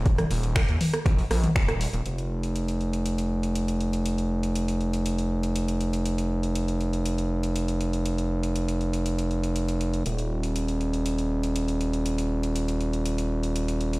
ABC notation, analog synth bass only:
X:1
M:4/4
L:1/16
Q:1/4=120
K:Ebmix
V:1 name="Analog synth bass" clef=bass
E,,, z E,,,2 z E,, z2 B,,, z B,,, z E,,,2 z E,,, | F,,,16- | F,,,16- | F,,,16- |
F,,,16 | E,,,16- | E,,,16 |]